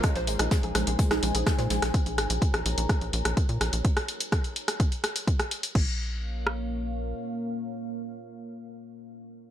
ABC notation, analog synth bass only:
X:1
M:4/4
L:1/16
Q:1/4=126
K:Bbm
V:1 name="Analog synth bass" clef=bass
z B,,, A,,, B,,, z B,,, B,,, B,,, z B,,, B,,, B,,, z B,, B,,, B,,, | z B,,, A,,, B,,, z B,,, B,,, B,,, z B,,, B,,, B,,, z B,, B,,, B,,, | z16 | B,,,12 z4 |
z16 |]